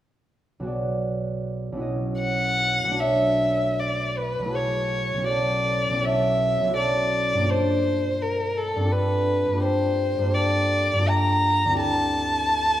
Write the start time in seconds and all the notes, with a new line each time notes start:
0.60 B1 B3 F#4
0.65 G#4 D5
1.72 B1 C#4
1.77 E4 F#4
1.81 D#5
2.20 F#5
2.84 B1 A3
2.90 D4 F#4
2.96 C#5 E5
3.80 D5
4.18 B4
4.39 B1 A3
4.46 E4 F#4
4.52 G#4 C#5
5.14 B1 C#4
5.20 E4 F#4
5.27 A4 D5
5.90 B1 C#4
5.96 E4 F#4
6.02 A4 E5
6.61 B1 C#4
6.67 E4 F#4
6.74 A4
6.78 D5
7.34 G2 A#3
7.40 D4 F4
7.46 A4 C5
8.22 A#4
8.57 A4
8.76 G2 C4
8.82 D4 F4
8.89 A4 B4
9.47 G2 A#3
9.54 F4 G4
9.60 A4 C5
10.18 G2 A#3
10.24 F4 G4
10.31 A4
10.35 D5
10.93 G2 A#3
10.99 F4 G4
11.06 A4 A#5
11.65 D2 C4
11.71 E4 G4
11.78 A4 A5